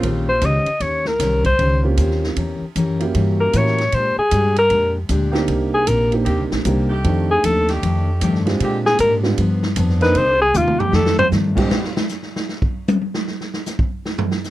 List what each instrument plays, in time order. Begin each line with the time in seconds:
Already playing: saxophone section C#3 G3 C4 F4
0.02 upright bass A#1, steel-string acoustic guitar D#3 C#4 G4 C5, kick, ride
0.29 alto saxophone C5
0.41 upright bass C#2, saxophone section C#3 G3 C4 D#4, steel-string acoustic guitar D#3 C#4 G4 C5, kick, hi-hat pedal, ride
0.45 alto saxophone D#5
0.65 muted upright bass stroke, ride
0.80 upright bass D#2, steel-string acoustic guitar D#3 C#4 G4 C5, alto saxophone C#5, kick, ride
1.05 alto saxophone A#4, snare
1.19 upright bass C2, steel-string acoustic guitar D#3 C#4 G4 C5, kick, snare, hi-hat pedal, ride
1.44 alto saxophone C5, kick, ride
1.59 upright bass C#2, steel-string acoustic guitar D#3 C#4 G4 C5, kick, ride
1.83 grand piano A#3 C4 C#4 F4 G4
1.97 upright bass D#2, steel-string acoustic guitar D#3 C#4 G4 C5, kick, hi-hat pedal, ride
2.11 snare
2.24 snare
2.36 upright bass E2, steel-string acoustic guitar E3 C#4 G4 A#4, kick, ride
2.61 muted upright bass stroke
2.76 upright bass F#2, steel-string acoustic guitar E3 C#4 G4 A#4, kick, hi-hat pedal, ride
3.00 grand piano A#3 C#4 E4 F#4 G4, ride
3.14 upright bass G2, steel-string acoustic guitar E3 C#4 G4 A#4, kick, ride
3.40 alto saxophone A#4
3.53 upright bass A2, steel-string acoustic guitar E3 C#4 G4 A#4, grand piano A#3 C#4 E4 F#4 A#4, alto saxophone C#5, kick, hi-hat pedal, ride
3.67 snare
3.78 snare, ride
3.92 upright bass A#2, steel-string acoustic guitar A#2 G#3 D4 G4, alto saxophone C5, kick, ride
4.17 alto saxophone G#4, muted upright bass stroke
4.31 upright bass G2, steel-string acoustic guitar A#2 G#3 D4 G4, kick, hi-hat pedal, ride
4.56 alto saxophone A#4, ride
4.70 upright bass F2, steel-string acoustic guitar A#2 G#3 D4 G4, kick, ride
5.09 upright bass D2, steel-string acoustic guitar A#2 G#3 D4 G4, kick, hi-hat pedal, ride
5.32 saxophone section D#3 A#3 C4 G4, grand piano A#3 C4 D4 D#4 G4, snare
5.48 upright bass C2, steel-string acoustic guitar C3 A#3 D#4, kick, ride
5.52 steel-string acoustic guitar G4
5.74 alto saxophone G#4
5.87 upright bass A#1, steel-string acoustic guitar C3 A#3 D#4 G4, alto saxophone A#4, kick, hi-hat pedal, ride
6.12 grand piano A#3 C4 D4 D#4 G4, ride
6.24 upright bass D#2, steel-string acoustic guitar C3 A#3 D#4, saxophone section D#3 A#3 C4 G4, kick, ride
6.29 steel-string acoustic guitar G4
6.39 upright bass C2
6.52 upright bass A#1, snare
6.65 upright bass C2, steel-string acoustic guitar C3 A#3 D#4 G4, grand piano A#3 C4 D4 D#4 G4, kick, hi-hat pedal, ride
6.89 saxophone section D#3 A3 G4
7.04 steel-string acoustic guitar F2 D#3 A3 D4, upright bass F2, grand piano A3 C4 D4 D#4 G4, kick, ride
7.31 alto saxophone G#4
7.43 upright bass D#2, steel-string acoustic guitar F2 D#3 A3 D4, alto saxophone A4, kick, hi-hat pedal, ride
7.68 saxophone section D#3 A3 D4 G4, snare, ride
7.82 steel-string acoustic guitar F2 D#3 A3 D4, upright bass F2, kick, ride
8.21 steel-string acoustic guitar F2 D#3 A3 D4, upright bass G2, saxophone section D#3 A3 D4 G4, kick, hi-hat pedal, ride
8.35 snare
8.45 grand piano G#3 C4 D4 F4 G4, snare, ride
8.59 steel-string acoustic guitar A#2 G#3 D4 G4, upright bass A#2, saxophone section D3 G#3 C4 G4, kick, ride
8.86 alto saxophone G#4, snare
8.99 upright bass G#2, steel-string acoustic guitar A#2 G#3 D4 G4, alto saxophone A#4, kick, hi-hat pedal, ride
9.23 grand piano G3 B3 D4 F4 G4, snare
9.38 upright bass G2, steel-string acoustic guitar G2 F3 B3 D4, kick, ride
9.63 snare
9.76 upright bass F2, steel-string acoustic guitar G2 F3 B3 D4, kick, hi-hat pedal, ride
9.90 snare
10.01 saxophone section D#3 A#3 C4 D#4, grand piano A#3 C4 D4 D#4 A#4, alto saxophone B4, snare, ride
10.15 upright bass C2, steel-string acoustic guitar C3 G3 A#3 D#4, alto saxophone C5, kick, ride
10.41 alto saxophone G#4
10.54 upright bass D#2, steel-string acoustic guitar C3 G3 A#3 D#4, alto saxophone F4, hi-hat pedal, mid tom
10.67 mid tom
10.79 alto saxophone G4, floor tom
10.91 steel-string acoustic guitar F2 D#3, upright bass F2, saxophone section D#3 A3 D4 G4, snare
10.95 steel-string acoustic guitar A3 D4, alto saxophone A4
11.06 snare
11.19 alto saxophone C5, floor tom
11.32 steel-string acoustic guitar F2 D#3 A3 D4, upright bass G2, snare, hi-hat pedal
11.55 grand piano A#2 G#3 C4 D4 F4 G4, saxophone section D3 G#3 C4 G4, kick, crash
11.71 snare
11.84 snare
11.97 snare
12.09 snare, hi-hat pedal
12.23 snare
12.36 snare
12.49 snare
12.62 kick
12.88 hi-hat pedal, high tom
13.01 high tom
13.14 snare
13.28 snare
13.41 snare
13.54 snare
13.66 snare, hi-hat pedal
13.79 kick
14.06 snare
14.18 floor tom
14.31 snare
14.44 snare, hi-hat pedal